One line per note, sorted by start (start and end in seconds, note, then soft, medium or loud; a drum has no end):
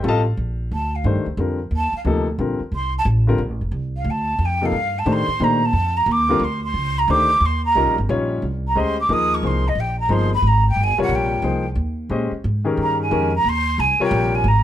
0.03 0.36 A1 loud
0.03 0.23 G3 medium
0.03 0.23 C4 medium
0.03 0.23 F4 medium
0.03 0.07 A4 medium
0.08 0.20 A4 medium
0.08 0.20 D#5 medium
0.08 0.20 F5 loud
0.08 0.20 A5 loud
0.37 0.70 A#1 medium
0.72 1.04 D2 medium
0.72 0.96 A5 medium
0.95 1.06 F5 medium
1.04 1.17 G2 medium
1.04 1.24 D#3 medium
1.04 1.24 A3 medium
1.04 1.24 D4 medium
1.04 1.25 G4 medium
1.04 1.25 C5 medium
1.15 1.26 F2 medium
1.26 1.37 D2 medium
1.37 1.70 F2 medium
1.37 1.57 D3 medium
1.37 1.58 G3 medium
1.37 1.58 C4 medium
1.37 1.58 F4 medium
1.37 1.59 A#4 medium
1.71 1.91 D#2 medium
1.76 1.94 A5 medium
1.92 2.01 F5 medium
1.92 muted upright bass stroke soft
2.05 2.37 D2 medium
2.05 2.24 C3 medium
2.05 2.25 F3 medium
2.05 2.25 A#3 medium
2.05 2.25 D#4 medium
2.05 2.26 A4 medium
2.39 2.59 A#1 medium
2.39 2.58 D3 medium
2.39 2.58 G3 medium
2.39 2.58 C4 medium
2.39 2.59 F4 soft
2.39 2.59 A#4 medium
2.60 muted upright bass stroke soft
2.72 3.04 C2 medium
2.72 2.93 C6 medium
2.98 3.04 A5 medium
3.05 3.38 A1 loud
3.27 3.38 D3 medium
3.27 3.38 G3 medium
3.27 3.38 C4 medium
3.27 3.38 F4 medium
3.27 3.39 A#4 medium
3.38 3.50 A#1 medium
3.50 3.60 A1 medium
3.61 3.71 F1 medium
3.72 4.04 C2 medium
3.97 4.11 F5 medium
4.04 4.38 D2 medium
4.10 4.46 A5 loud
4.38 4.71 F2 medium
4.45 4.67 G5 medium
4.61 4.72 C3 medium
4.61 4.72 F3 medium
4.61 4.72 A#3 medium
4.61 4.73 D#4 medium
4.61 4.73 A4 medium
4.61 5.00 F5 loud
4.72 5.05 G2 medium
4.98 5.14 A5 medium
5.06 5.26 A2 loud
5.06 5.26 D#3 medium
5.06 5.26 A3 medium
5.06 5.26 D4 medium
5.06 5.26 G4 medium
5.06 5.26 C5 medium
5.12 5.45 C6 loud
5.28 muted upright bass stroke soft
5.40 5.72 A#2 medium
5.40 5.60 D#3 medium
5.40 5.59 A3 medium
5.40 5.60 D4 medium
5.40 5.60 G4 medium
5.40 5.60 C5 medium
5.40 5.66 A#5 medium
5.65 5.98 A5 loud
5.73 6.06 F2 medium
5.97 6.13 A#5 medium
6.06 6.39 D#2 loud
6.11 6.45 D6 loud
6.29 6.40 D3 medium
6.29 6.40 G3 medium
6.29 6.40 C4 medium
6.29 6.40 F4 medium
6.29 6.40 A#4 loud
6.40 6.73 D2 loud
6.40 6.63 C6 medium
6.64 7.00 C6 loud
6.74 7.07 C#2 medium
6.98 7.11 A#5 medium
7.08 7.40 D2 loud
7.08 7.28 D#3 medium
7.08 7.28 A3 medium
7.08 7.28 D4 medium
7.08 7.28 G4 medium
7.08 7.28 C5 medium
7.08 7.47 D6 loud
7.40 7.73 D#2 medium
7.45 7.64 C6 loud
7.65 7.95 A#5 loud
7.75 7.86 C2 medium
7.75 7.94 G3 medium
7.75 7.95 C#4 medium
7.75 7.95 D#4 medium
7.75 7.95 F4 medium
7.75 7.95 A#4 medium
7.86 7.97 A#1 medium
7.98 8.08 G1 medium
8.09 8.41 A#1 loud
8.09 8.42 G3 medium
8.09 8.42 C#4 medium
8.09 8.42 D#4 medium
8.09 8.43 F4 medium
8.09 8.43 C#5 medium
8.42 8.75 C2 medium
8.67 8.81 A#5 medium
8.75 9.08 D2 medium
8.75 8.95 G#3 medium
8.75 8.95 C#4 medium
8.75 8.95 G4 medium
8.75 8.95 C5 medium
8.75 8.96 D#5 medium
8.75 8.99 C6 medium
9.00 9.14 D6 medium
9.09 9.41 D#2 loud
9.09 9.41 F3 medium
9.09 9.42 A#3 medium
9.09 9.42 D#4 medium
9.09 9.43 G#4 medium
9.09 9.60 A#4 medium
9.09 9.35 D#6 loud
9.34 9.48 C#6 loud
9.43 9.75 C2 medium
9.43 9.62 F3 medium
9.43 9.62 A#3 medium
9.43 9.63 D#4 medium
9.43 9.63 G#4 medium
9.43 9.63 C5 medium
9.43 9.69 C6 loud
9.68 9.81 D#5 medium
9.75 10.08 A#1 medium
9.79 9.99 G5 medium
9.99 10.14 A#5 loud
10.09 10.42 G1 loud
10.09 10.29 F3 medium
10.09 10.29 A#3 medium
10.09 10.29 D#4 medium
10.09 10.29 G#4 medium
10.09 10.30 C5 medium
10.09 10.33 C6 loud
10.33 10.48 B5 loud
10.42 10.75 G#1 medium
10.47 10.67 A#5 medium
10.69 10.85 G5 loud
10.76 10.96 G1 medium
10.83 11.01 G#5 loud
10.98 11.41 C3 medium
10.98 11.41 G3 medium
10.98 11.41 F4 medium
10.98 11.42 A#4 medium
10.98 11.42 C#5 medium
10.98 muted upright bass stroke soft
11.02 11.16 F#5 loud
11.09 11.41 A#1 loud
11.14 11.67 G5 medium
11.42 11.75 C2 medium
11.42 11.63 F3 medium
11.42 11.63 A#3 medium
11.42 11.63 D#4 medium
11.42 11.63 G#4 medium
11.42 11.63 C5 medium
11.76 12.09 D#2 medium
12.09 12.30 A#2 medium
12.09 12.30 G#3 medium
12.09 12.30 C#4 medium
12.09 12.30 G4 medium
12.09 12.30 C5 medium
12.09 12.31 D#5 medium
12.32 muted upright bass stroke soft
12.44 12.77 G#2 medium
12.65 13.08 D#3 medium
12.65 13.09 C#4 medium
12.65 13.09 G4 medium
12.65 13.08 G#4 medium
12.65 13.09 A#4 medium
12.77 13.10 G2 medium
12.82 13.00 A#5 medium
13.02 13.32 G#5 medium
13.10 13.44 F2 loud
13.10 13.30 D#3 medium
13.10 13.30 G#3 medium
13.10 13.31 C#4 medium
13.10 13.31 G4 medium
13.10 13.31 A#4 medium
13.35 13.50 A#5 loud
13.44 13.77 D#2 medium
13.48 13.81 C6 loud
13.78 13.98 C2 medium
13.78 14.00 G#5 loud
13.99 14.43 C3 medium
13.99 14.43 G3 medium
13.99 14.43 F4 medium
13.99 14.44 A#4 medium
13.99 14.44 C#5 loud
13.99 14.36 G5 loud
13.99 muted upright bass stroke soft
14.11 14.43 A#1 loud
14.35 14.49 G#5 loud
14.44 14.63 G#1 loud
14.44 14.63 A#5 medium